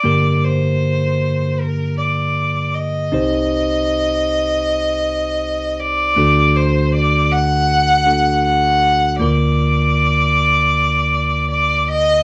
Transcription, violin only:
\new Staff \with { instrumentName = "Violin" } { \time 4/4 \key g \minor \tempo 4 = 79 d''8 c''4. bes'8 d''4 ees''8~ | ees''2.~ ees''8 d''8~ | d''8 c''8 d''8 fis''4. fis''4 | d''2. d''8 ees''8 | }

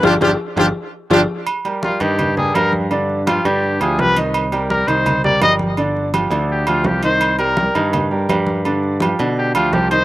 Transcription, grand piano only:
\new Staff \with { instrumentName = "Grand piano" } { \time 4/4 \key g \phrygian \tempo 4 = 167 <d' f' g'>8 <d' f' g'>8 r8 <d' f' g'>8 r4 <d' f' g'>8 r8 | r8 <g g' bes'>8 <g g' bes'>8 <ees ees' ees''>4 <g g' bes'>8 <g g' bes'>4 | <d d' d''>4 <f f' g'>8 <d d' d''>4 <f f' g'>8 <f f' g'>8 <ees ees' ees''>8~ | <ees ees' ees''>8 <g g' bes'>8 <g g' bes'>8 <ees ees' ees''>4 <g g' bes'>8 <g g' bes'>4 |
<d d' d''>4 <f f' g'>8 <d d' d''>4 <f f' g'>8 <f f' g'>8 <ees ees' ees''>8~ | <ees ees' ees''>8 <g g' bes'>8 <g g' bes'>8 <ees ees' ees''>4 <g g' bes'>8 <g g' bes'>4 | <d d' d''>4 <f f' g'>8 <d d' d''>4 <f f' g'>8 <f f' g'>8 <ees ees' ees''>8 | }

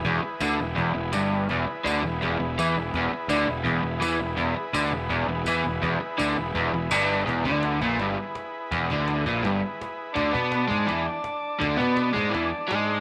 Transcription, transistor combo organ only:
\new Staff \with { instrumentName = "Transistor combo organ" } { \time 4/4 \key e \major \tempo 4 = 166 <e' gis' b'>1 | <e' gis' b'>1~ | <e' gis' b'>1 | <e' gis' b'>1~ |
<e' gis' b'>1 | \key e \mixolydian <e' gis' b'>1~ | <e' gis' b'>1 | <d' d'' a''>1~ |
<d' d'' a''>1 | }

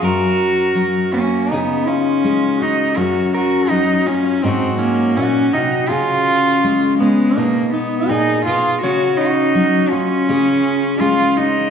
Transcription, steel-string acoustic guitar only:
\new Staff \with { instrumentName = "Steel-string acoustic guitar" } { \clef bass \time 4/4 \key fis \major \tempo 4 = 82 << { cis'4. cis'8 <dis' gis'>4. dis'8 | cis'4. cis'8 <dis' fis'>2 | cis'4. cis'8 dis'2 | cis'4. cis'8 <cis' gis'>4. cis'8 | } \\ { fis,4 fis4 cis4 gis4 | fis,4 fis4 gis,4 ais,8 bis,8 | cis4 gis4 b,4 ais,8 b,8 | cis4 fis4 cis4 gis4 | } >> }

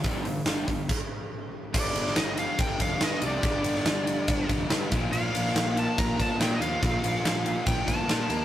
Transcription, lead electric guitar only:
\new Staff \with { instrumentName = "Lead electric guitar" } { \time 4/4 \key g \minor \tempo 4 = 142 r1 | d''4 ees''8 f''8 g''8 f''8 ees''8 d''8~ | d''2~ d''8 r4. | f''4. a''8 bes''8 a''8 \tuplet 3/2 { g''8 ees''16 f''8.~ } |
f''2 g''8 a''4. | }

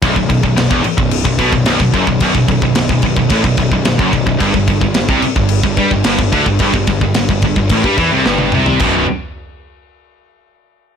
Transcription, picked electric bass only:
\new Staff \with { instrumentName = "Picked electric bass" } { \clef bass \time 4/4 \key g \major \tempo 4 = 109 b,,,16 b,,,16 b,,,16 b,,,16 b,,,16 e,,16 r16 b,,,8 b,,,16 b,,16 b,,,16 b,,,16 b,,,16 fis,,16 b,,,16 | b,,,16 b,,,16 b,,,16 b,,,16 b,,,16 b,,,16 b,,,16 b,,,16 a,,16 b,,,16 b,,,16 b,,,16 b,,,16 fis,,16 b,,,16 b,,,16 | g,,16 g,,16 g,,16 g,,16 g,,16 c,16 r16 g,,8 g,,16 g,16 g,,16 g,,16 g,,16 d,16 g,,16 | g,,16 g,,16 g,,16 g,,16 g,,16 g,,16 g,,16 g,,16 a,,16 g,16 e,16 c,16 g,,8 c,8 |
b,,,8 r2. r8 | }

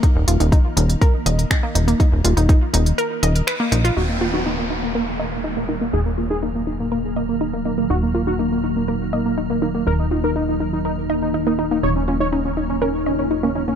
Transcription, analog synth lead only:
\new Staff \with { instrumentName = "Analog synth lead" } { \time 4/4 \key ees \minor \tempo 4 = 122 r1 | r1 | ges'16 bes16 bes16 ges'16 bes16 bes16 r16 bes16 bes16 r16 bes16 bes16 r16 bes16 bes16 bes16 | aes'16 bes16 bes16 aes'16 bes16 bes16 r16 bes16 bes16 r16 bes16 bes16 r16 bes16 bes16 bes16 |
ges'16 bes16 bes16 ges'16 bes16 bes16 r16 bes16 bes16 r16 bes16 bes16 r16 bes16 bes16 bes16 | bes'16 ees'16 ees'16 bes'16 ees'16 ees'16 r16 ees'16 ees'16 r16 ees'16 ees'16 r16 ees'16 ees'16 ees'16 | des''16 des'16 des'16 des''16 des'16 des'16 r16 des'16 des'16 r16 des'16 des'16 r16 des'16 des'16 des'16 | }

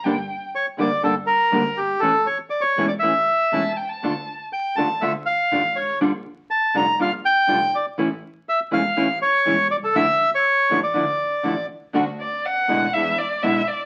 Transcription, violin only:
\new Staff \with { instrumentName = "Violin" } { \time 4/4 \key d \minor \tempo 4 = 121 g''8. r2. r16 | r2. a''8 g''16 a''16~ | a''8. r2. r16 | r1 |
r1 | r1 | \key d \major r8 d''8 fis''4 e''8 d''8 e''8 d''8 | }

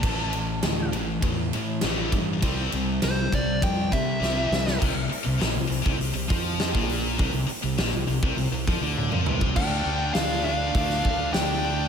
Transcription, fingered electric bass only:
\new Staff \with { instrumentName = "Fingered electric bass" } { \clef bass \time 4/4 \key bes \lydian \tempo 4 = 101 a,,4 d,8 a,,8 e,8 a,8 a,,8 g,8 | c,8 c,8 c,8 c,8 f,8 c8 c,8 c,8 | c,16 c,16 r16 c,16 bes,,16 c,16 c,16 c,16 c,16 c,16 f,8. bes,,8. | c,16 c,16 r16 c,16 bes,,16 c,16 c,16 c,16 c,16 c,16 f,16 d,8 f,16 c,8 |
d,8 d,8 d,4 d,8 d,8 d,4 | }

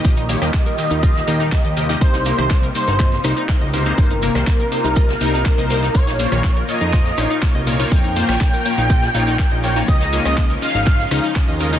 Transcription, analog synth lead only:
\new Staff \with { instrumentName = "Analog synth lead" } { \time 4/4 \key c \phrygian \tempo 4 = 122 ees''1 | c''4. c''4. r4 | bes'1 | des''4. ees''4. r4 |
g''1 | ees''4. f''4. r4 | }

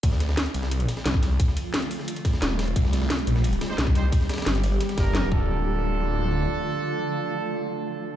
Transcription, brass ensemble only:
\new Staff \with { instrumentName = "Brass ensemble" } { \time 4/4 \key d \phrygian \tempo 4 = 176 r1 | r1 | r2 r8. <ees' g' c''>16 r8 <ees' g' c''>16 r16 | r2 r8 <d' g' bes'>4 <d' f' a'>8~ |
<d' f' a'>1~ | <d' f' a'>1 | }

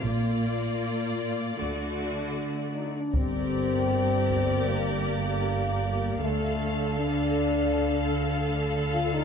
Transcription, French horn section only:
\new Staff \with { instrumentName = "French horn section" } { \time 4/4 \key g \minor \tempo 4 = 78 r2. r8 ees'16 d'16 | c'2 bes2 | a4 d'2 r8 f'16 ees'16 | }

